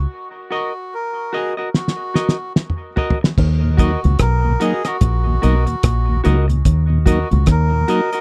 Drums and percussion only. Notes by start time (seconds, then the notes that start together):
1.74 snare
1.88 snare
2.15 snare
2.29 snare
2.56 snare
2.70 mid tom
2.97 floor tom
3.10 floor tom
3.24 snare
3.38 kick, crash
3.78 kick, closed hi-hat
4.04 closed hi-hat
4.19 kick, cross-stick, closed hi-hat
4.61 closed hi-hat
4.85 cross-stick, closed hi-hat
5.01 kick, closed hi-hat
5.43 closed hi-hat
5.67 closed hi-hat
5.83 kick, cross-stick, closed hi-hat
6.25 closed hi-hat
6.50 closed hi-hat
6.65 kick, closed hi-hat
7.06 kick, closed hi-hat
7.31 closed hi-hat
7.46 kick, cross-stick, closed hi-hat
7.88 closed hi-hat
8.13 closed hi-hat